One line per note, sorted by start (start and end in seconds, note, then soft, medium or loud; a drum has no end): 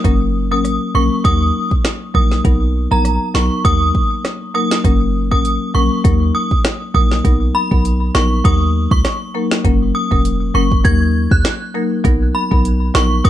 0.04 0.53 F#1 loud
0.04 0.26 F#3 medium
0.04 0.27 A#3 medium
0.04 0.27 C#4 medium
0.04 0.27 A#4 loud
0.04 kick loud
0.04 closed hi-hat medium
0.51 0.79 G#1 medium
0.51 0.71 F#3 medium
0.51 0.71 A#3 medium
0.51 0.71 C#4 medium
0.51 0.71 A#4 medium
0.51 0.71 D#6 medium
0.65 cross-stick medium
0.65 closed hi-hat medium
0.94 1.10 A#1 medium
0.94 1.16 F#3 medium
0.94 1.17 A#3 medium
0.94 1.17 C#4 medium
0.94 1.17 A#4 medium
0.94 1.14 C#6 medium
1.24 1.52 D#2 loud
1.24 2.08 F#3 medium
1.24 2.08 A#3 medium
1.24 2.08 D#4 medium
1.24 2.08 A#4 loud
1.24 1.69 D#6 loud
1.24 kick medium
1.24 closed hi-hat medium
1.71 kick loud
1.85 finger snap medium
1.85 cross-stick loud
1.85 snare loud
1.85 closed hi-hat medium
2.14 2.42 A#1 medium
2.14 2.36 F#3 medium
2.14 2.37 A#3 medium
2.14 2.37 D#4 medium
2.14 2.37 A#4 medium
2.14 2.26 D#6 medium
2.14 kick medium
2.32 snare medium
2.44 2.87 B1 loud
2.44 2.66 F#3 medium
2.44 2.67 B3 medium
2.44 2.67 D#4 medium
2.44 2.67 A#4 loud
2.44 kick loud
2.44 closed hi-hat medium
2.91 3.19 A#1 medium
2.91 3.11 F#3 medium
2.91 3.11 B3 medium
2.91 3.11 D#4 medium
2.91 3.11 A#4 medium
2.91 3.11 A#5 medium
3.05 cross-stick medium
3.05 closed hi-hat medium
3.34 3.50 B1 loud
3.34 3.56 F#3 medium
3.34 3.57 B3 medium
3.34 3.57 D#4 medium
3.34 3.57 A#4 medium
3.34 3.54 C#6 medium
3.34 finger snap medium
3.34 snare loud
3.64 3.92 D#2 loud
3.64 4.48 F#3 medium
3.64 4.48 A#3 medium
3.64 4.48 D#4 medium
3.64 4.49 A#4 loud
3.64 4.09 D#6 loud
3.64 kick medium
3.64 closed hi-hat medium
3.95 kick loud
4.25 cross-stick loud
4.25 snare medium
4.25 closed hi-hat medium
4.54 4.76 F#3 medium
4.54 4.77 A#3 medium
4.54 4.77 D#4 medium
4.54 4.77 A#4 medium
4.54 4.65 D#6 medium
4.71 finger snap medium
4.71 snare loud
4.84 5.33 F#1 loud
4.84 5.06 F#3 medium
4.84 5.07 A#3 medium
4.84 5.07 C#4 medium
4.84 5.07 A#4 loud
4.84 kick loud
4.84 closed hi-hat medium
5.31 5.59 G#1 medium
5.31 5.51 F#3 medium
5.31 5.51 A#3 medium
5.31 5.51 C#4 medium
5.31 5.51 A#4 medium
5.31 5.51 D#6 medium
5.31 kick medium
5.45 closed hi-hat medium
5.74 5.90 A#1 medium
5.74 5.96 F#3 medium
5.74 5.96 A#3 medium
5.74 5.97 C#4 medium
5.74 5.97 A#4 medium
5.74 5.94 C#6 medium
6.04 6.32 D#2 loud
6.04 6.88 F#3 medium
6.04 6.88 A#3 medium
6.04 6.88 D#4 medium
6.04 6.88 A#4 loud
6.04 kick medium
6.04 closed hi-hat medium
6.35 6.45 D#6 medium
6.51 kick medium
6.65 finger snap loud
6.65 cross-stick loud
6.65 snare loud
6.65 closed hi-hat medium
6.94 7.22 A#1 medium
6.94 7.16 F#3 medium
6.94 7.17 A#3 medium
6.94 7.17 D#4 medium
6.94 7.17 A#4 medium
6.94 7.05 D#6 medium
6.94 kick medium
7.11 snare medium
7.24 7.52 B1 loud
7.24 7.46 F#3 medium
7.24 7.47 B3 medium
7.24 7.47 D#4 medium
7.24 7.47 A#4 loud
7.24 kick loud
7.24 closed hi-hat medium
7.55 7.65 B5 medium
7.71 8.11 B1 medium
7.71 7.91 F#3 medium
7.71 7.91 B3 medium
7.71 7.91 D#4 medium
7.71 7.91 A#4 medium
7.71 kick medium
7.85 closed hi-hat medium
8.14 8.42 A#1 medium
8.14 8.36 F#3 medium
8.14 8.37 B3 medium
8.14 8.37 D#4 medium
8.14 8.37 A#4 medium
8.14 8.25 C#6 medium
8.14 finger snap medium
8.14 snare loud
8.44 8.87 D#2 loud
8.44 9.28 F#3 medium
8.44 9.28 A#3 medium
8.44 9.28 D#4 medium
8.44 9.29 A#4 loud
8.44 8.56 D#6 medium
8.44 kick medium
8.44 closed hi-hat medium
8.91 9.03 C#2 medium
8.91 9.00 C#6 medium
8.91 kick medium
9.05 cross-stick loud
9.05 snare medium
9.05 closed hi-hat medium
9.35 9.56 F#3 medium
9.35 9.57 A#3 medium
9.35 9.57 D#4 medium
9.35 9.57 A#4 medium
9.51 finger snap medium
9.51 snare loud
9.64 9.92 F#1 loud
9.64 9.86 F#3 medium
9.64 9.87 A#3 medium
9.64 9.87 C#4 medium
9.64 9.87 A#4 loud
9.64 kick loud
9.64 closed hi-hat medium
9.95 10.06 D#6 medium
10.11 10.51 E1 medium
10.11 10.31 F#3 medium
10.11 10.31 A#3 medium
10.11 10.31 C#4 medium
10.11 10.31 A#4 medium
10.11 kick medium
10.25 closed hi-hat medium
10.54 10.82 F#1 loud
10.54 10.76 F#3 medium
10.54 10.77 A#3 medium
10.54 10.77 C#4 medium
10.54 10.77 A#4 medium
10.54 10.65 C#6 medium
10.72 kick medium
10.84 11.28 D#2 loud
10.84 11.68 F#3 medium
10.84 11.68 A#3 medium
10.84 11.68 D#4 medium
10.84 11.68 A#4 loud
10.84 10.95 G#6 medium
10.84 kick medium
10.84 closed hi-hat medium
11.31 11.43 D#2 medium
11.31 11.40 F#6 medium
11.31 kick medium
11.45 finger snap loud
11.45 cross-stick loud
11.45 snare loud
11.45 closed hi-hat medium
11.74 11.96 F#3 medium
11.74 11.97 A#3 medium
11.74 11.97 D#4 medium
11.74 11.97 A#4 medium
12.04 12.32 B1 loud
12.04 12.26 F#3 loud
12.04 12.26 B3 medium
12.04 12.27 D#4 medium
12.04 12.27 A#4 loud
12.04 kick loud
12.04 closed hi-hat medium
12.35 12.45 B5 medium
12.51 12.91 B1 medium
12.51 12.71 F#3 medium
12.51 12.71 B3 medium
12.51 12.71 D#4 medium
12.51 12.71 A#4 medium
12.51 kick medium
12.65 closed hi-hat medium
12.94 13.22 A#1 medium
12.94 13.16 F#3 medium
12.94 13.16 B3 medium
12.94 13.17 D#4 medium
12.94 13.17 A#4 medium
12.94 13.06 C#6 medium
12.94 finger snap medium
12.94 snare loud
13.24 13.30 D#2 loud
13.24 13.30 F#3 medium
13.24 13.30 A#3 medium
13.24 13.30 D#4 medium
13.24 13.30 A#4 loud
13.24 13.30 D#6 medium
13.24 kick medium
13.24 closed hi-hat medium